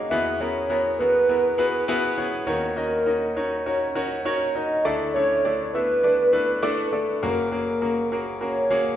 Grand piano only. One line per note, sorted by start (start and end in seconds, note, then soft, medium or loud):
0.00 0.13 A#3 medium
0.00 0.13 C#4 medium
0.00 0.11 F#4 medium
0.00 0.11 G#4 medium
0.00 0.13 A#4 loud
0.00 0.12 C#5 loud
0.11 2.44 E2 medium
0.11 2.44 E3 medium
0.11 0.37 B3 medium
0.11 0.37 E4 medium
0.11 0.37 F#4 medium
0.11 0.37 G#4 medium
0.11 0.37 B4 loud
0.40 0.67 B3 medium
0.40 0.67 E4 medium
0.40 0.67 F#4 medium
0.40 0.67 G#4 medium
0.40 0.67 A#4 medium
0.70 0.96 B3 medium
0.70 0.96 E4 medium
0.70 0.96 F#4 medium
0.70 0.96 G#4 medium
0.70 0.96 A#4 medium
1.00 1.26 B3 medium
1.00 1.26 E4 medium
1.00 1.26 F#4 medium
1.00 1.26 G#4 medium
1.00 1.26 A#4 medium
1.29 1.55 B3 medium
1.29 1.56 E4 medium
1.29 1.56 F#4 medium
1.29 1.56 G#4 medium
1.29 1.56 A#4 medium
1.58 1.85 B3 medium
1.58 1.85 E4 medium
1.58 1.85 F#4 medium
1.58 1.85 G#4 medium
1.58 1.85 B4 loud
1.88 2.15 B3 loud
1.88 2.15 E4 loud
1.88 2.15 F#4 loud
1.88 2.15 G#4 loud
1.88 2.15 B4 loud
2.17 2.44 B3 medium
2.17 2.44 E4 medium
2.17 2.44 F#4 medium
2.17 2.44 G#4 medium
2.17 2.44 C#5 medium
2.46 4.80 D#2 medium
2.46 4.81 D#3 medium
2.46 2.74 C#4 loud
2.46 2.74 D#4 medium
2.46 2.74 F#4 medium
2.46 2.74 A#4 medium
2.46 2.74 C#5 loud
2.77 3.04 C#4 medium
2.77 3.04 D#4 medium
2.77 3.03 F#4 medium
2.77 3.04 A#4 medium
2.77 3.04 D#5 medium
3.06 3.33 C#4 medium
3.06 3.33 D#4 medium
3.06 3.33 F#4 medium
3.06 3.33 A#4 medium
3.06 3.33 D#5 medium
3.36 3.63 C#4 medium
3.36 3.63 D#4 medium
3.36 3.63 F#4 medium
3.36 3.63 A#4 medium
3.36 3.63 C#5 medium
3.66 3.93 C#4 medium
3.66 3.93 D#4 medium
3.66 3.93 F#4 medium
3.66 3.93 A#4 medium
3.66 3.93 C#5 medium
3.95 4.22 C#4 loud
3.95 4.22 D#4 medium
3.95 4.22 F#4 medium
3.95 4.22 A#4 medium
3.95 4.22 C#5 loud
4.25 4.52 C#4 loud
4.25 4.52 D#4 medium
4.25 4.52 F#4 medium
4.25 4.52 A#4 medium
4.25 4.52 C#5 loud
4.55 4.82 C#4 medium
4.55 4.82 D#4 medium
4.55 4.82 F#4 medium
4.55 4.82 A#4 medium
4.55 4.82 D#5 medium
4.85 7.18 D2 medium
4.85 7.19 D3 medium
4.85 5.11 A3 medium
4.85 5.11 D4 medium
4.85 5.12 E4 medium
4.85 5.11 A4 medium
4.85 5.11 D5 loud
5.15 5.42 A3 medium
5.15 5.42 D4 medium
5.15 5.41 E4 medium
5.15 5.42 A4 medium
5.15 5.42 C#5 medium
5.45 5.71 A3 medium
5.45 5.71 D4 medium
5.45 5.71 E4 medium
5.45 5.71 A4 medium
5.45 5.71 D5 medium
5.74 6.01 A3 medium
5.74 6.01 D4 medium
5.74 6.01 E4 medium
5.74 6.01 A4 medium
5.74 6.01 E5 medium
6.03 6.30 A3 medium
6.03 6.30 D4 medium
6.03 6.30 E4 medium
6.03 6.30 A4 medium
6.03 6.30 D5 medium
6.33 6.59 A3 medium
6.33 6.59 D4 medium
6.33 6.60 E4 medium
6.33 6.60 A4 medium
6.33 6.60 B4 loud
6.62 6.89 A3 loud
6.62 6.89 D4 loud
6.62 6.89 E4 loud
6.62 6.89 A4 loud
6.62 6.89 D5 loud
6.92 7.19 A3 medium
6.92 7.19 D4 medium
6.92 7.19 E4 medium
6.92 7.19 A4 medium
6.92 7.19 D5 medium
7.23 8.96 F#1 medium
7.23 8.96 F#2 medium
7.23 7.49 A#3 medium
7.23 7.49 C#4 medium
7.23 7.49 F#4 medium
7.23 7.49 G#4 medium
7.23 7.49 A#4 loud
7.52 7.78 A#3 medium
7.52 7.78 C#4 medium
7.52 7.79 F#4 medium
7.52 7.78 G#4 medium
7.52 7.79 A#4 medium
7.81 8.08 A#3 medium
7.81 8.08 C#4 medium
7.81 8.08 F#4 medium
7.81 8.08 G#4 medium
7.81 8.08 A#4 medium
8.12 8.38 A#3 medium
8.12 8.38 C#4 medium
8.12 8.38 F#4 medium
8.12 8.38 G#4 medium
8.12 8.38 A#4 medium
8.41 8.67 A#3 medium
8.41 8.68 C#4 medium
8.41 8.67 F#4 medium
8.41 8.67 G#4 medium
8.41 8.67 A#4 medium
8.70 8.96 A#3 loud
8.70 8.96 C#4 medium
8.70 8.96 F#4 medium
8.70 8.96 G#4 medium
8.70 8.96 C#5 medium